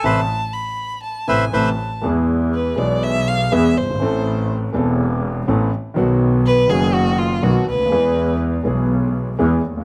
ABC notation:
X:1
M:4/4
L:1/16
Q:1/4=122
K:Am
V:1 name="Violin"
a4 b4 a2 ^g2 a4 | z4 B2 d2 e2 f2 e2 c2- | c4 z12 | z4 B2 ^G2 ^F2 =F2 ^F2 B2- |
B4 z12 |]
V:2 name="Bandoneon"
[Bce]2 z8 [Bce]2 [Bce]2 z2 | z16 | z16 | z16 |
z16 |]
V:3 name="Grand piano" clef=bass
[C,E,A,]2 z8 [C,E,A,]2 [C,E,A,]2 z2 | [E,,E,^G,B,^G]6 [B,,,B,,E,G,B,G]6 [E,,E,G,B,G]2 z/2 ^F,,,/2 =G,,,/2 ^G,,,/2 | [A,,,A,,E,A,CA]6 [E,,,E,,E,B,CA]6 [A,,,A,,E,B,CA]2 z2 | [B,,,B,,^D,^F,B,^F]6 [^F,,,^F,,D,F,B,F]6 [B,,,B,,D,F,B,F]2 z/2 ^C,,/2 =D,,/2 ^D,,/2 |
[E,,E,^G,B,^G]6 [B,,,B,,E,G,B,G]6 [E,,E,G,B,G]2 z/2 D,,/2 ^D,,/2 z/2 |]
V:4 name="Double bass" clef=bass
A,,,2 z8 A,,,2 A,,,2 z2 | E,,6 B,,,6 E,,2 G,,,2 | A,,,6 E,,,6 A,,,2 z2 | B,,,6 ^F,,,6 B,,,2 D,,2 |
E,,6 B,,,6 E,,2 ^D,,2 |]